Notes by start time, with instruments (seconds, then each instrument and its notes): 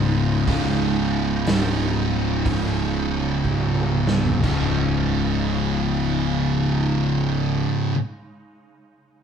Already playing: picked electric bass C#1, distorted electric guitar C#2 G#2 C#3, synth drone C#3 G#3 D#4
0.46 picked electric bass C#1, distorted electric guitar C#2 G#2 C#3, synth drone F#3, kick, open hi-hat
1.46 picked electric bass C#1, snare, open hi-hat
2.46 picked electric bass C#1, kick, open hi-hat
3.45 picked electric bass C#1, kick
3.75 mid tom
4.07 snare
4.25 floor tom
4.41 picked electric bass C#1, distorted electric guitar C#2 G#2, synth drone C#3 G#3 D#4, kick, crash
4.45 distorted electric guitar C#3